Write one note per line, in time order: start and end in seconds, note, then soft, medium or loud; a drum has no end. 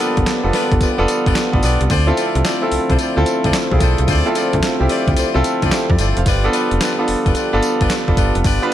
0.00 6.22 D3 medium
0.00 1.86 F3 medium
0.00 1.86 G3 medium
0.00 1.92 A#3 medium
0.00 0.44 B3 loud
0.00 1.86 B3 medium
0.00 0.44 D4 loud
0.00 0.19 F4 medium
0.00 0.44 F4 medium
0.00 0.19 G4 medium
0.00 1.92 G4 medium
0.00 0.45 A4 loud
0.00 0.19 B4 medium
0.00 0.19 D5 medium
0.17 0.25 G1 loud
0.17 kick medium
0.17 closed hi-hat soft
0.26 snare loud
0.26 clap medium
0.26 closed hi-hat medium
0.26 tambourine medium
0.44 0.52 F1 medium
0.44 0.79 B3 medium
0.44 0.79 D4 medium
0.44 0.79 F4 medium
0.44 0.79 A4 medium
0.53 0.73 F4 medium
0.53 0.73 G4 medium
0.53 0.73 B4 medium
0.53 0.74 D5 medium
0.53 snare medium
0.53 open hi-hat medium
0.72 0.79 G1 loud
0.72 kick loud
0.72 closed hi-hat soft
0.80 0.88 F1 soft
0.80 1.00 F4 medium
0.80 1.00 G4 medium
0.80 1.01 B4 medium
0.80 1.01 D5 medium
0.80 kick medium
0.80 closed hi-hat medium
0.80 tambourine medium
0.98 1.07 F1 medium
0.98 1.33 B3 loud
0.98 1.34 D4 medium
0.98 1.34 F4 medium
0.98 1.34 A4 loud
1.08 closed hi-hat medium
1.08 tambourine medium
1.26 1.34 G1 loud
1.26 1.39 F4 medium
1.26 1.39 G4 medium
1.26 1.39 B4 medium
1.26 1.39 D5 medium
1.26 kick medium
1.26 closed hi-hat soft
1.35 snare loud
1.35 clap medium
1.35 closed hi-hat medium
1.35 tambourine medium
1.53 1.61 A1 loud
1.53 1.88 B3 medium
1.53 1.88 D4 medium
1.53 1.88 F4 medium
1.53 1.88 A4 medium
1.53 kick medium
1.62 1.78 B1 medium
1.62 1.82 F4 medium
1.62 1.82 G4 medium
1.62 1.82 B4 medium
1.62 1.83 D5 medium
1.62 open hi-hat medium
1.62 tambourine medium
1.81 1.88 C2 loud
1.81 closed hi-hat medium
1.89 2.13 D2 loud
1.89 8.40 F3 medium
1.89 6.22 A3 medium
1.89 6.22 C4 medium
1.89 2.09 F4 loud
1.89 2.10 A4 medium
1.89 2.10 C5 medium
1.89 2.10 D5 loud
1.89 kick loud
1.89 closed hi-hat medium
1.89 tambourine medium
2.07 2.42 C4 loud
2.07 2.42 E4 medium
2.07 2.43 F4 medium
2.07 2.43 A4 loud
2.17 2.37 F4 medium
2.17 2.37 A4 medium
2.17 2.37 C5 medium
2.17 2.37 D5 medium
2.17 closed hi-hat medium
2.17 tambourine medium
2.35 2.43 C2 loud
2.35 closed hi-hat medium
2.44 2.64 F4 medium
2.44 2.64 A4 medium
2.44 2.64 C5 medium
2.44 2.64 D5 medium
2.44 snare loud
2.44 clap medium
2.44 closed hi-hat medium
2.44 tambourine medium
2.62 2.97 C4 medium
2.62 2.97 E4 medium
2.62 2.97 F4 medium
2.62 2.98 A4 loud
2.72 2.79 C2 medium
2.72 open hi-hat medium
2.90 2.97 C2 loud
2.90 2.97 F4 medium
2.90 2.98 A4 medium
2.90 2.98 C5 medium
2.90 2.98 D5 medium
2.90 kick loud
2.90 closed hi-hat soft
2.99 3.19 F4 medium
2.99 3.19 A4 medium
2.99 3.19 C5 medium
2.99 3.19 D5 medium
2.99 closed hi-hat medium
2.99 tambourine medium
3.16 3.25 D2 loud
3.16 3.52 C4 loud
3.16 3.52 E4 medium
3.16 3.52 F4 medium
3.16 3.52 A4 loud
3.26 closed hi-hat medium
3.26 tambourine medium
3.44 3.52 D2 medium
3.44 3.57 F4 medium
3.44 3.57 A4 medium
3.44 3.57 C5 medium
3.44 3.57 D5 medium
3.44 kick medium
3.44 closed hi-hat soft
3.53 snare loud
3.53 clap medium
3.53 closed hi-hat medium
3.53 tambourine loud
3.71 3.79 C2 loud
3.71 4.06 C4 medium
3.71 4.06 E4 medium
3.71 4.06 F4 medium
3.71 3.76 G#4 medium
3.71 kick medium
3.79 3.96 B1 loud
3.79 4.00 F4 medium
3.79 4.10 A4 medium
3.79 4.00 A4 medium
3.79 4.01 C5 medium
3.79 4.01 D5 medium
3.79 kick loud
3.79 closed hi-hat medium
3.79 tambourine medium
3.98 4.07 C2 loud
3.98 closed hi-hat medium
4.07 4.23 D2 loud
4.07 4.28 F4 loud
4.07 4.28 A4 medium
4.07 4.28 C5 medium
4.07 4.28 D5 loud
4.07 kick loud
4.07 closed hi-hat medium
4.07 tambourine medium
4.26 4.61 C4 loud
4.26 4.61 E4 medium
4.26 4.61 F4 medium
4.26 4.61 A4 loud
4.35 4.55 F4 medium
4.35 4.55 A4 medium
4.35 4.55 C5 medium
4.35 4.55 D5 medium
4.35 closed hi-hat medium
4.35 tambourine medium
4.53 4.61 D2 loud
4.53 kick medium
4.53 closed hi-hat soft
4.62 snare loud
4.62 clap medium
4.62 closed hi-hat medium
4.62 tambourine medium
4.80 4.88 C2 medium
4.80 5.15 C4 medium
4.80 5.15 E4 medium
4.80 5.16 F4 medium
4.80 5.16 G4 medium
4.89 5.09 F4 medium
4.89 5.09 A4 medium
4.89 5.09 C5 medium
4.89 5.10 D5 loud
4.89 open hi-hat medium
5.08 5.15 D2 medium
5.08 kick loud
5.08 closed hi-hat soft
5.16 5.25 C2 soft
5.16 5.37 F4 medium
5.16 5.37 A4 medium
5.16 5.37 C5 medium
5.16 5.37 D5 medium
5.16 closed hi-hat medium
5.16 tambourine medium
5.34 5.43 C2 medium
5.34 5.70 C4 loud
5.34 5.70 E4 medium
5.34 5.70 F4 loud
5.34 5.70 A4 loud
5.44 closed hi-hat medium
5.44 tambourine medium
5.62 5.70 D2 loud
5.62 5.75 F4 medium
5.62 5.75 A4 medium
5.62 5.75 C5 medium
5.62 5.75 D5 medium
5.62 kick medium
5.62 closed hi-hat soft
5.71 5.89 G4 medium
5.71 5.89 C5 medium
5.71 snare loud
5.71 clap medium
5.71 closed hi-hat medium
5.71 tambourine loud
5.90 5.97 F2 loud
5.90 6.16 A4 medium
5.90 6.16 D5 medium
5.90 kick medium
5.98 6.14 G1 medium
5.98 6.19 F4 medium
5.98 6.19 A4 medium
5.98 6.19 C5 medium
5.98 6.19 D5 medium
5.98 closed hi-hat medium
5.98 tambourine medium
6.17 6.25 F1 medium
6.17 6.43 C5 medium
6.17 6.43 F5 medium
6.17 closed hi-hat medium
6.26 6.49 G1 loud
6.26 8.74 D3 medium
6.26 8.74 G3 medium
6.26 8.74 B3 medium
6.26 6.46 F4 loud
6.26 6.46 G4 medium
6.26 6.46 B4 medium
6.26 6.46 D5 loud
6.26 kick loud
6.26 closed hi-hat medium
6.26 tambourine medium
6.44 6.79 B3 loud
6.44 6.79 D4 medium
6.44 6.79 F4 medium
6.44 6.80 A4 loud
6.53 6.73 F4 medium
6.53 6.73 G4 medium
6.53 6.73 B4 medium
6.53 6.73 D5 medium
6.53 closed hi-hat medium
6.53 tambourine medium
6.71 6.79 F1 medium
6.71 closed hi-hat soft
6.80 7.00 F4 medium
6.80 7.00 G4 medium
6.80 7.01 B4 medium
6.80 7.01 D5 medium
6.80 snare loud
6.80 clap medium
6.80 closed hi-hat medium
6.80 tambourine medium
6.99 7.34 B3 medium
6.99 7.34 D4 medium
6.99 7.34 F4 medium
6.99 7.34 A4 loud
7.08 7.16 F1 medium
7.08 open hi-hat medium
7.26 7.34 F1 loud
7.26 7.34 F4 medium
7.26 7.34 G4 medium
7.26 7.34 B4 medium
7.26 7.34 D5 medium
7.26 kick loud
7.26 closed hi-hat soft
7.35 7.55 F4 medium
7.35 7.55 G4 medium
7.35 7.55 B4 medium
7.35 7.55 D5 medium
7.35 closed hi-hat medium
7.35 tambourine medium
7.53 7.61 G1 medium
7.53 7.88 B3 loud
7.53 7.88 D4 loud
7.53 7.88 F4 medium
7.53 7.89 A4 loud
7.63 closed hi-hat medium
7.63 tambourine medium
7.81 7.89 G1 loud
7.81 7.93 F4 medium
7.81 7.93 G4 medium
7.81 7.93 B4 medium
7.81 7.93 D5 medium
7.81 kick medium
7.81 closed hi-hat soft
7.90 snare loud
7.90 clap medium
7.90 closed hi-hat medium
7.90 tambourine loud
8.08 8.16 F1 loud
8.08 8.43 B3 medium
8.08 8.43 D4 medium
8.08 8.43 F4 medium
8.08 8.43 A4 loud
8.08 kick medium
8.17 8.32 G1 loud
8.17 8.37 F4 medium
8.17 8.37 G4 medium
8.17 8.37 B4 medium
8.17 8.37 D5 medium
8.17 kick loud
8.17 closed hi-hat medium
8.17 tambourine medium
8.35 8.43 F1 loud
8.35 closed hi-hat medium
8.44 8.60 G1 loud
8.44 8.64 F4 medium
8.44 8.74 G4 medium
8.44 8.64 G4 medium
8.44 8.64 B4 medium
8.44 8.64 D5 loud
8.44 kick loud
8.44 closed hi-hat medium
8.44 tambourine medium
8.62 8.74 B3 loud
8.62 8.74 D4 medium
8.62 8.74 F4 medium
8.62 8.74 B4 loud